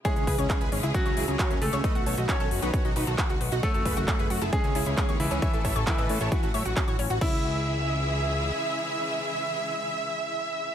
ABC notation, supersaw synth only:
X:1
M:4/4
L:1/16
Q:1/4=134
K:C#m
V:1 name="Supersaw synth"
[Ec] C [GB] C C [GB] C [EG] C C [EG] C C C z C | [Bd] F [Ac] F F [Ac] F [DB] F F [DB] F F F z F | [Ac] F [GB] F F [GB] F [EG] C C [EG] C C C z C | [ce] A [ce] A A [Bd] A [Ac] F F [ce] F F F z F |
e16- | e16 |]